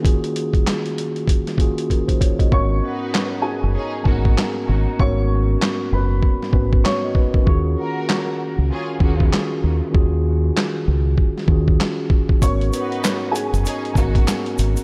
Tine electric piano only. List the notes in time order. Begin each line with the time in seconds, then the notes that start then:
Already playing: A#3 C#4 F4 F#4 G#4
0.00 D#3 A#3 C#4 F4
0.05 F#4 G#4
1.56 D#3 A#3 C#4 F4 F#4
1.61 G#4
1.91 C#4 A#4
2.07 D#4 C5
2.20 F4 C#5
2.39 F#4 D#5
2.50 G#2 B3 C#4 F#4
2.55 A#4
4.03 G#2 A#3 C#4 F#4
4.08 B3 A#4
4.98 G#2 B3 C#4 F#4
5.03 A#4
6.49 G#2 B3 C#4 F#4
6.54 B4
7.04 F#4 D#5
7.15 D#4 B4
7.36 C#4 A#4
7.42 D#3 C#4 F4 F#4
7.47 G#4
9.00 D#3 C#4 F4 F#4
9.05 G#4
9.90 D#3 C#4 F4 F#4
9.95 G#4
11.46 D#3 C#4 F4 F#4
11.51 G#4
12.40 G#2 B3 C#4 F#4
12.45 A#4
13.93 G#2 A#3 C#4 F#4
13.98 B3 A#4